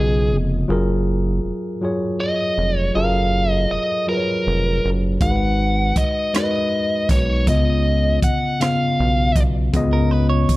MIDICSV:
0, 0, Header, 1, 6, 480
1, 0, Start_track
1, 0, Key_signature, 6, "major"
1, 0, Tempo, 754717
1, 433, Time_signature, 6, 3, 24, 8
1, 6721, End_track
2, 0, Start_track
2, 0, Title_t, "Lead electric guitar"
2, 0, Program_c, 0, 29
2, 0, Note_on_c, 0, 68, 70
2, 229, Note_off_c, 0, 68, 0
2, 1401, Note_on_c, 0, 75, 77
2, 1763, Note_off_c, 0, 75, 0
2, 1763, Note_on_c, 0, 73, 77
2, 1878, Note_on_c, 0, 77, 93
2, 1891, Note_off_c, 0, 73, 0
2, 2241, Note_off_c, 0, 77, 0
2, 2241, Note_on_c, 0, 75, 93
2, 2361, Note_off_c, 0, 75, 0
2, 2361, Note_on_c, 0, 75, 82
2, 2580, Note_off_c, 0, 75, 0
2, 2600, Note_on_c, 0, 70, 82
2, 3111, Note_off_c, 0, 70, 0
2, 3318, Note_on_c, 0, 78, 97
2, 3800, Note_on_c, 0, 75, 82
2, 3810, Note_off_c, 0, 78, 0
2, 4033, Note_off_c, 0, 75, 0
2, 4041, Note_on_c, 0, 75, 83
2, 4518, Note_off_c, 0, 75, 0
2, 4520, Note_on_c, 0, 73, 82
2, 4758, Note_off_c, 0, 73, 0
2, 4760, Note_on_c, 0, 75, 83
2, 5211, Note_off_c, 0, 75, 0
2, 5239, Note_on_c, 0, 78, 80
2, 5479, Note_off_c, 0, 78, 0
2, 5481, Note_on_c, 0, 77, 82
2, 5992, Note_off_c, 0, 77, 0
2, 6721, End_track
3, 0, Start_track
3, 0, Title_t, "Clean electric guitar"
3, 0, Program_c, 1, 27
3, 6314, Note_on_c, 1, 70, 67
3, 6431, Note_off_c, 1, 70, 0
3, 6431, Note_on_c, 1, 71, 84
3, 6545, Note_off_c, 1, 71, 0
3, 6547, Note_on_c, 1, 73, 84
3, 6721, Note_off_c, 1, 73, 0
3, 6721, End_track
4, 0, Start_track
4, 0, Title_t, "Tine electric piano"
4, 0, Program_c, 2, 4
4, 0, Control_c, 2, 64, 127
4, 0, Note_on_c, 2, 49, 58
4, 0, Note_on_c, 2, 59, 53
4, 0, Note_on_c, 2, 65, 52
4, 0, Note_on_c, 2, 75, 64
4, 381, Note_off_c, 2, 49, 0
4, 385, Note_off_c, 2, 59, 0
4, 389, Note_off_c, 2, 65, 0
4, 391, Note_off_c, 2, 75, 0
4, 433, Note_on_c, 2, 54, 83
4, 439, Note_on_c, 2, 65, 73
4, 440, Control_c, 2, 64, 0
4, 445, Note_on_c, 2, 68, 76
4, 454, Note_on_c, 2, 70, 90
4, 559, Control_c, 2, 64, 127
4, 1102, Note_off_c, 2, 54, 0
4, 1105, Note_off_c, 2, 65, 0
4, 1109, Note_off_c, 2, 68, 0
4, 1113, Note_off_c, 2, 70, 0
4, 1153, Note_on_c, 2, 54, 68
4, 1161, Note_on_c, 2, 65, 60
4, 1167, Note_on_c, 2, 68, 62
4, 1174, Note_on_c, 2, 73, 82
4, 1822, Note_off_c, 2, 54, 0
4, 1827, Note_off_c, 2, 65, 0
4, 1829, Note_off_c, 2, 68, 0
4, 1833, Note_off_c, 2, 73, 0
4, 1871, Note_on_c, 2, 54, 64
4, 1879, Note_on_c, 2, 65, 63
4, 1884, Note_on_c, 2, 68, 67
4, 1892, Note_on_c, 2, 69, 56
4, 1924, Note_off_c, 2, 69, 0
4, 1935, Note_on_c, 2, 70, 86
4, 2542, Note_off_c, 2, 54, 0
4, 2545, Note_off_c, 2, 65, 0
4, 2548, Note_off_c, 2, 68, 0
4, 2573, Note_off_c, 2, 70, 0
4, 2591, Note_on_c, 2, 54, 61
4, 2599, Note_on_c, 2, 65, 49
4, 2605, Note_on_c, 2, 68, 51
4, 2612, Note_on_c, 2, 71, 54
4, 2644, Note_off_c, 2, 71, 0
4, 2653, Note_on_c, 2, 73, 60
4, 3261, Note_off_c, 2, 54, 0
4, 3265, Note_off_c, 2, 65, 0
4, 3268, Note_off_c, 2, 68, 0
4, 3293, Note_off_c, 2, 73, 0
4, 3311, Note_on_c, 2, 56, 66
4, 3318, Note_on_c, 2, 63, 64
4, 3321, Control_c, 2, 64, 0
4, 3324, Note_on_c, 2, 66, 58
4, 3333, Note_on_c, 2, 70, 62
4, 3364, Note_off_c, 2, 70, 0
4, 3374, Note_on_c, 2, 71, 71
4, 3426, Control_c, 2, 64, 127
4, 3982, Note_off_c, 2, 56, 0
4, 3985, Note_off_c, 2, 63, 0
4, 3988, Note_off_c, 2, 66, 0
4, 4013, Note_off_c, 2, 71, 0
4, 4030, Note_on_c, 2, 56, 62
4, 4038, Note_on_c, 2, 63, 52
4, 4045, Note_on_c, 2, 66, 49
4, 4052, Note_on_c, 2, 70, 52
4, 4084, Note_off_c, 2, 70, 0
4, 4093, Note_on_c, 2, 71, 62
4, 4701, Note_off_c, 2, 56, 0
4, 4705, Note_off_c, 2, 63, 0
4, 4709, Note_off_c, 2, 66, 0
4, 4732, Note_off_c, 2, 71, 0
4, 4751, Note_on_c, 2, 49, 74
4, 4759, Note_on_c, 2, 59, 69
4, 4760, Control_c, 2, 64, 0
4, 4767, Note_on_c, 2, 65, 64
4, 4772, Note_on_c, 2, 75, 85
4, 4876, Control_c, 2, 64, 127
4, 5421, Note_off_c, 2, 49, 0
4, 5425, Note_off_c, 2, 59, 0
4, 5429, Note_off_c, 2, 65, 0
4, 5432, Note_off_c, 2, 75, 0
4, 5470, Note_on_c, 2, 49, 59
4, 5477, Note_on_c, 2, 59, 55
4, 5484, Note_on_c, 2, 65, 51
4, 5490, Note_on_c, 2, 77, 66
4, 6141, Note_off_c, 2, 49, 0
4, 6144, Note_off_c, 2, 59, 0
4, 6148, Note_off_c, 2, 65, 0
4, 6151, Note_off_c, 2, 77, 0
4, 6189, Note_on_c, 2, 49, 87
4, 6197, Note_on_c, 2, 59, 85
4, 6204, Note_on_c, 2, 65, 76
4, 6210, Note_on_c, 2, 75, 102
4, 6721, Note_off_c, 2, 49, 0
4, 6721, Note_off_c, 2, 59, 0
4, 6721, Note_off_c, 2, 65, 0
4, 6721, Note_off_c, 2, 75, 0
4, 6721, End_track
5, 0, Start_track
5, 0, Title_t, "Analog synth bass"
5, 0, Program_c, 3, 38
5, 0, Note_on_c, 3, 35, 89
5, 201, Note_on_c, 3, 29, 83
5, 211, Note_off_c, 3, 35, 0
5, 413, Note_off_c, 3, 29, 0
5, 442, Note_on_c, 3, 30, 95
5, 892, Note_off_c, 3, 30, 0
5, 923, Note_on_c, 3, 29, 47
5, 968, Note_off_c, 3, 29, 0
5, 1641, Note_on_c, 3, 29, 81
5, 1853, Note_off_c, 3, 29, 0
5, 1883, Note_on_c, 3, 30, 90
5, 2332, Note_off_c, 3, 30, 0
5, 2365, Note_on_c, 3, 29, 49
5, 2410, Note_off_c, 3, 29, 0
5, 2844, Note_on_c, 3, 29, 90
5, 3055, Note_off_c, 3, 29, 0
5, 3084, Note_on_c, 3, 30, 79
5, 3295, Note_off_c, 3, 30, 0
5, 3317, Note_on_c, 3, 32, 83
5, 3769, Note_off_c, 3, 32, 0
5, 3795, Note_on_c, 3, 35, 49
5, 3842, Note_off_c, 3, 35, 0
5, 4516, Note_on_c, 3, 35, 83
5, 4757, Note_on_c, 3, 37, 95
5, 4767, Note_off_c, 3, 35, 0
5, 5210, Note_off_c, 3, 37, 0
5, 5237, Note_on_c, 3, 35, 49
5, 5284, Note_off_c, 3, 35, 0
5, 5723, Note_on_c, 3, 35, 86
5, 5935, Note_off_c, 3, 35, 0
5, 5956, Note_on_c, 3, 35, 83
5, 6171, Note_off_c, 3, 35, 0
5, 6199, Note_on_c, 3, 37, 102
5, 6651, Note_off_c, 3, 37, 0
5, 6676, Note_on_c, 3, 35, 45
5, 6721, Note_off_c, 3, 35, 0
5, 6721, End_track
6, 0, Start_track
6, 0, Title_t, "Drums"
6, 3312, Note_on_c, 9, 36, 92
6, 3313, Note_on_c, 9, 42, 58
6, 3376, Note_off_c, 9, 36, 0
6, 3376, Note_off_c, 9, 42, 0
6, 3791, Note_on_c, 9, 36, 76
6, 3791, Note_on_c, 9, 42, 69
6, 3854, Note_off_c, 9, 36, 0
6, 3854, Note_off_c, 9, 42, 0
6, 4036, Note_on_c, 9, 42, 72
6, 4044, Note_on_c, 9, 37, 82
6, 4100, Note_off_c, 9, 42, 0
6, 4108, Note_off_c, 9, 37, 0
6, 4510, Note_on_c, 9, 36, 85
6, 4511, Note_on_c, 9, 42, 62
6, 4574, Note_off_c, 9, 36, 0
6, 4575, Note_off_c, 9, 42, 0
6, 4752, Note_on_c, 9, 36, 94
6, 4752, Note_on_c, 9, 42, 63
6, 4816, Note_off_c, 9, 36, 0
6, 4816, Note_off_c, 9, 42, 0
6, 5231, Note_on_c, 9, 36, 77
6, 5232, Note_on_c, 9, 42, 65
6, 5295, Note_off_c, 9, 36, 0
6, 5296, Note_off_c, 9, 42, 0
6, 5477, Note_on_c, 9, 42, 74
6, 5485, Note_on_c, 9, 37, 92
6, 5540, Note_off_c, 9, 42, 0
6, 5549, Note_off_c, 9, 37, 0
6, 5950, Note_on_c, 9, 36, 87
6, 5951, Note_on_c, 9, 42, 62
6, 6014, Note_off_c, 9, 36, 0
6, 6015, Note_off_c, 9, 42, 0
6, 6192, Note_on_c, 9, 42, 66
6, 6193, Note_on_c, 9, 36, 94
6, 6256, Note_off_c, 9, 36, 0
6, 6256, Note_off_c, 9, 42, 0
6, 6671, Note_on_c, 9, 36, 75
6, 6672, Note_on_c, 9, 42, 69
6, 6721, Note_off_c, 9, 36, 0
6, 6721, Note_off_c, 9, 42, 0
6, 6721, End_track
0, 0, End_of_file